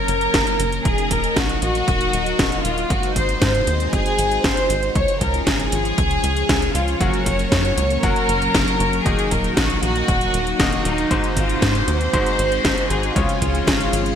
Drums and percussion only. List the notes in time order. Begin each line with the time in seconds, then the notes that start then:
0.08 closed hi-hat
0.21 closed hi-hat
0.34 kick, snare, closed hi-hat
0.47 closed hi-hat
0.60 closed hi-hat
0.72 closed hi-hat
0.85 kick, closed hi-hat
0.98 closed hi-hat
1.11 kick, closed hi-hat
1.24 closed hi-hat
1.36 kick, snare, closed hi-hat
1.49 closed hi-hat
1.62 closed hi-hat
1.75 closed hi-hat
1.88 kick, closed hi-hat
2.01 closed hi-hat
2.13 closed hi-hat
2.26 closed hi-hat
2.39 kick, snare, closed hi-hat
2.52 closed hi-hat
2.65 closed hi-hat
2.78 closed hi-hat
2.90 kick, closed hi-hat
3.03 closed hi-hat
3.16 kick, closed hi-hat
3.29 closed hi-hat
3.42 kick, snare, closed hi-hat
3.54 closed hi-hat
3.67 closed hi-hat
3.80 closed hi-hat
3.93 kick, closed hi-hat
4.06 closed hi-hat
4.19 closed hi-hat
4.31 closed hi-hat
4.44 kick, snare, closed hi-hat
4.57 closed hi-hat
4.70 closed hi-hat
4.83 closed hi-hat
4.95 kick, closed hi-hat
5.08 closed hi-hat
5.21 kick, closed hi-hat
5.34 closed hi-hat
5.47 kick, snare, closed hi-hat
5.60 closed hi-hat
5.72 closed hi-hat
5.85 closed hi-hat
5.98 kick, closed hi-hat
6.11 closed hi-hat
6.24 closed hi-hat
6.37 closed hi-hat
6.49 kick, snare, closed hi-hat
6.62 closed hi-hat
6.75 closed hi-hat
6.88 closed hi-hat
7.01 kick, closed hi-hat
7.14 closed hi-hat
7.26 kick, closed hi-hat
7.39 closed hi-hat
7.52 kick, snare, closed hi-hat
7.65 closed hi-hat
7.78 closed hi-hat
7.90 closed hi-hat
8.03 kick, closed hi-hat
8.16 closed hi-hat
8.29 closed hi-hat
8.42 closed hi-hat
8.54 kick, snare, closed hi-hat
8.68 closed hi-hat
8.80 closed hi-hat
8.93 closed hi-hat
9.06 kick, closed hi-hat
9.19 closed hi-hat
9.31 kick, closed hi-hat
9.44 closed hi-hat
9.57 kick, snare, closed hi-hat
9.70 closed hi-hat
9.83 closed hi-hat
9.96 closed hi-hat
10.08 kick, closed hi-hat
10.21 closed hi-hat
10.34 closed hi-hat
10.47 closed hi-hat
10.60 kick, snare, closed hi-hat
10.72 closed hi-hat
10.85 closed hi-hat
10.98 closed hi-hat
11.11 kick, closed hi-hat
11.24 closed hi-hat
11.36 kick, closed hi-hat
11.49 closed hi-hat
11.62 kick, snare, closed hi-hat
11.75 closed hi-hat
11.88 closed hi-hat
12.01 closed hi-hat
12.13 kick, closed hi-hat
12.26 closed hi-hat
12.39 closed hi-hat
12.52 closed hi-hat
12.65 kick, snare, closed hi-hat
12.78 closed hi-hat
12.90 closed hi-hat
13.03 closed hi-hat
13.16 kick, closed hi-hat
13.29 closed hi-hat
13.42 kick, closed hi-hat
13.55 closed hi-hat
13.67 kick, snare, closed hi-hat
13.81 closed hi-hat
13.93 closed hi-hat
14.06 closed hi-hat